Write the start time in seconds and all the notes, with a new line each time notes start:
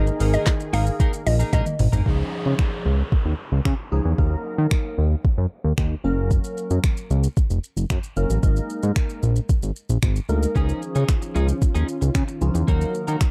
Already playing: G#1 D#3 A#3 D#4 G#4 A#4 D#5
0.07 muted clean electric guitar stroke, shaker
0.20 G#1 A#3 D#4 G#4 A#4, open hi-hat, shaker
0.33 A#3 D#4 G#4 A#4 D#5, shaker
0.46 kick, snare, clap, closed hi-hat, shaker
0.60 muted clean electric guitar stroke, shaker
0.73 G#1 A#3 D#4 G#4 A#4 F5, open hi-hat, shaker
0.86 muted clean electric guitar stroke, shaker
0.99 A#3 D#4 G#4 A#4, kick, closed hi-hat, shaker
1.13 muted clean electric guitar stroke, shaker
1.26 A#1 D#5, muted clean electric guitar stroke, open hi-hat, shaker
1.39 A#3 D#4 G#4 A#4, shaker
1.53 A#1 A#3 D#4 G#4 A#4 D#5, kick, clap, closed hi-hat, high tom, shaker
1.66 muted clean electric guitar stroke, mid tom, shaker
1.79 G#1, muted clean electric guitar stroke, mid tom, open hi-hat, shaker
1.92 G#1 A#3 D#4 G#4 A#4, floor tom, shaker
2.06 C#2 F3 C#4 D#4 G#4, kick, downlifter
2.46 C#3
2.59 finger snap, kick
2.86 C#2
3.12 kick
3.25 D#2
3.52 C#2
3.65 C#3, finger snap, kick
3.92 C#2 F3 C#4 D#4 G#4
4.05 E2
4.18 D#2 F#3 A#3 D#4 A#4, kick
4.58 D#3
4.71 finger snap, kick
4.98 D#2
5.25 kick
5.38 F#2
5.64 D#2
5.78 D#2, finger snap, kick
6.04 F#1 F#3 A#3 C#4 A#4
6.31 kick, shaker
6.44 shaker
6.57 shaker
6.71 F#2, shaker
6.84 finger snap, kick, shaker
6.97 shaker
7.10 C#2, shaker
7.24 shaker
7.37 kick, shaker
7.50 F1, shaker
7.64 shaker
7.77 F#1, shaker
7.90 F#2, finger snap, kick, shaker
8.03 shaker
8.16 F#1 F#3 A#3 C#4 A#4, shaker
8.30 A1, shaker
8.43 G#1 G#3 A#3 D#4 A#4, kick, shaker
8.56 shaker
8.70 shaker
8.83 G#2, shaker
8.96 finger snap, kick, shaker
9.09 shaker
9.23 A#1, shaker
9.36 shaker
9.49 kick, shaker
9.63 G#1, shaker
9.76 shaker
9.89 A#1, shaker
10.03 G#1, finger snap, kick, shaker
10.16 shaker
10.29 D2 G#3 A#3 D#4 A#4, shaker
10.43 shaker
10.55 C#2 D#3 F3 C#4 D#4 F4 G#4, kick, shaker
10.69 shaker
10.82 muted clean electric guitar stroke, shaker
10.95 C#3 F3 C#4 D#4 G#4, shaker
11.08 finger snap, muted clean electric guitar stroke, kick, clap, shaker
11.22 muted clean electric guitar stroke, shaker
11.35 C#2 F3 C#4 D#4 G#4, shaker
11.48 muted clean electric guitar stroke, shaker
11.61 muted clean electric guitar stroke, kick, shaker
11.75 D#2 F3 C#4 D#4 G#4, shaker
11.88 muted clean electric guitar stroke, shaker
12.01 C#2, muted clean electric guitar stroke, shaker
12.15 C#3, finger snap, muted clean electric guitar stroke, kick, clap, shaker
12.28 muted clean electric guitar stroke, shaker
12.41 C#2 F3 C#4 D#4 F4, shaker
12.54 E2, muted clean electric guitar stroke, shaker
12.67 D#2 F#3 A#3 D#4 F#4 A#4, kick, shaker
12.81 shaker
12.94 muted clean electric guitar stroke, shaker
13.07 D#3 A#3 D#4 F#4 A#4, shaker
13.21 finger snap, muted clean electric guitar stroke, kick, clap, shaker